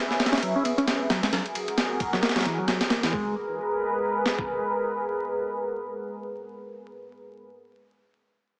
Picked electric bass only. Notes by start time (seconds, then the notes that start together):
0.32 C#4
0.42 F#3
0.56 C#4
0.65 B3
0.78 C#4
0.87 C#4
1.10 F#3
1.23 G#3
1.32 F#3
2.13 F#3
2.23 A#3
2.36 F#3
2.45 E3
2.58 F#3
2.67 F#3
2.90 A#3
3.03 E3
3.13 G#3